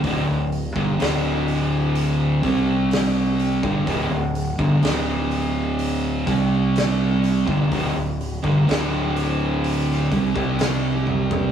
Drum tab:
HH |o-o-o-o-o-o-o-o-|o-o-o-o-o-o-o-o-|o-o-o-o-o-o-o---|
SD |----o-------o---|----o-------o---|----o----o--o---|
T1 |----------------|----------------|--------------o-|
FT |----------------|----------------|---------------o|
BD |o--o------o----o|o--o------o----o|o--o------oo----|